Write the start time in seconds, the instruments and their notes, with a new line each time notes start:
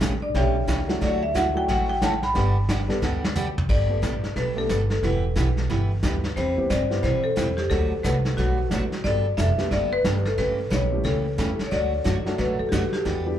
0.01 upright bass A1, steel-string acoustic guitar C#3 E3 A3 C#4 G4, kick, snare, hi-hat pedal
0.22 marimba D4 D5
0.34 upright bass B1, steel-string acoustic guitar C#3 E3 A3 C#4 G4, marimba G4 C#5 E5 G5, brush sweep, kick, snare
0.67 upright bass C#2, steel-string acoustic guitar C#3 E3 A3 C#4 G4, kick, snare, hi-hat pedal
0.88 upright piano F#3 A3 D4 E4 F#4, snare
1.01 upright bass D2, steel-string acoustic guitar D3 F#3 A3 E4 F#4, marimba D5, brush sweep, kick, snare
1.23 marimba E5
1.34 steel-string acoustic guitar D3 F#3 A3 E4 F#4, marimba F#5, kick, snare, hi-hat pedal
1.54 upright piano F#3 A3 D4 E4 F#4, marimba G5
1.68 upright bass A1, steel-string acoustic guitar D3 F#3 A3 E4 F#4, marimba F#5, brush sweep, kick, snare
1.89 marimba G5
2.02 steel-string acoustic guitar D3 F#3 A3 E4 F#4, marimba A5, kick, snare, hi-hat pedal
2.23 marimba B5, snare
2.34 upright bass G1, steel-string acoustic guitar D3 G3 B3 D4 G4, upright piano G3 B3 D4 G4 B4, brush sweep, kick, snare
2.69 steel-string acoustic guitar D3 G3 B3 D4 G4, kick, snare, hi-hat pedal
2.88 upright piano G3 B3 D4 G4 A4, snare
3.02 upright bass D2, steel-string acoustic guitar D3 G3 B3 D4 G4, snare
3.24 snare
3.36 steel-string acoustic guitar D3 G3 B3 D4 G4, floor tom, hi-hat pedal
3.58 floor tom
3.69 upright bass G1, steel-string acoustic guitar G3 B3 D4 A4, marimba D5, brush sweep, kick, snare, crash
3.89 upright piano A3 B3 D4 G4 A4
4.02 upright bass A1, steel-string acoustic guitar G3 B3 D4 A4, kick, snare, hi-hat pedal
4.23 muted upright bass stroke, snare
4.36 upright bass B1, steel-string acoustic guitar G3 B3 D4 A4, marimba B4, brush sweep, kick, snare
4.56 upright piano A3 B3 D4 G4 A4, marimba A4
4.69 upright bass G1, steel-string acoustic guitar G3 B3 D4 A4, kick, snare, hi-hat pedal
4.90 marimba A4, snare
5.03 upright bass E1, steel-string acoustic guitar E3 B3 E4 G4 B4, marimba B4, brush sweep, kick, snare
5.36 upright bass B1, steel-string acoustic guitar E3 B3 E4 G4 B4, kick, snare, hi-hat pedal
5.57 snare
5.69 upright bass G1, steel-string acoustic guitar E3 B3 E4 G4 B4, brush sweep, kick, snare
6.03 upright bass D2, steel-string acoustic guitar E3 B3 E4 G4 B4, upright piano G3 B3 E4 G4 B4, kick, snare, hi-hat pedal
6.24 snare
6.36 upright bass E2, steel-string acoustic guitar E3 G3 C4 E4 B4, marimba C5, brush sweep, kick, snare
6.56 upright piano G3 B3 C4 E4 G4, muted upright bass stroke
6.70 upright bass G2, steel-string acoustic guitar E3 G3 C4 E4 B4, marimba D5, kick, snare, hi-hat pedal
6.90 upright piano G3 B3 E4 G4, snare
7.03 upright bass B2, steel-string acoustic guitar E3 G3 C4 E4 B4, marimba C5, brush sweep, kick, snare
7.24 marimba A4
7.36 upright bass E2, steel-string acoustic guitar E3 G3 C4 E4 B4, kick, snare, hi-hat pedal
7.57 marimba G4, snare
7.70 upright bass D2, steel-string acoustic guitar D3 F#3 A3 D4 F#4 B4, marimba A4, brush sweep, kick, snare
7.91 muted upright bass stroke
8.03 upright bass C2, steel-string acoustic guitar D3 F#3 A3 D4 F#4 B4, marimba B4, kick, snare, hi-hat pedal
8.25 snare
8.37 upright bass B1, steel-string acoustic guitar D3 F#3 A3 D4 F#4 B4, marimba F#4, brush sweep, kick, snare
8.69 upright bass A1, steel-string acoustic guitar D3 F#3 A3 D4 F#4 B4, upright piano F#3 A3 B3 D4 F#4, kick, snare, hi-hat pedal
8.92 snare
9.04 upright bass G1, steel-string acoustic guitar G3 B3 D4 A4, marimba D5, brush sweep, kick, snare
9.37 upright bass F1, steel-string acoustic guitar G3 B3 D4 A4, marimba E5, kick, snare, hi-hat pedal
9.58 upright piano G3 A3 B3 D4 G4, muted upright bass stroke, snare
9.71 upright bass F#1, steel-string acoustic guitar G3 B3 D4 A4, marimba D5, brush sweep, kick, snare
9.93 marimba B4
10.04 upright bass G1, upright piano G3 A3 B3 D4 G4, steel-string acoustic guitar G3 B3 D4 A4, kick, snare, hi-hat pedal
10.25 marimba A4, snare
10.38 upright bass A1, steel-string acoustic guitar C#3 E3 A3 C#4 G4, marimba B4, brush sweep, kick, snare
10.70 upright bass B1, steel-string acoustic guitar C#3 E3 A3 C#4 G4, marimba C#5, kick, snare, hi-hat pedal
10.91 upright piano G3 A3 C#4 E4 G4
11.04 upright bass C#2, steel-string acoustic guitar C#3 E3 A3 C#4 G4, marimba A4, brush sweep, kick, snare
11.37 upright bass E2, steel-string acoustic guitar C#3 E3 A3 C#4 G4, upright piano G3 A3 C#4 E4 A4, kick, snare, hi-hat pedal
11.59 muted upright bass stroke, snare
11.66 marimba C#5
11.71 upright bass D2, steel-string acoustic guitar D3 F#3 A3 D4 F#4, marimba D5, brush sweep, kick, snare
12.04 upright bass F#2, steel-string acoustic guitar D3 F#3 A3 D4 F#4, kick, snare, hi-hat pedal
12.25 upright piano F#3 A3 D4 F#4 A4, muted upright bass stroke, snare
12.38 upright bass A2, steel-string acoustic guitar D3 F#3 A3 D4 F#4, marimba B4, brush sweep, kick, snare
12.59 marimba A4, muted upright bass stroke
12.69 upright bass F#2, steel-string acoustic guitar D3 F#3 A3, marimba F#4 G4, kick, snare, hi-hat pedal
12.73 steel-string acoustic guitar D4 F#4
12.93 marimba G4, snare
13.05 upright bass E2, steel-string acoustic guitar E3 B3 D4 G4, brush sweep, kick, snare
13.25 upright piano G3 B3 D4 E4 G4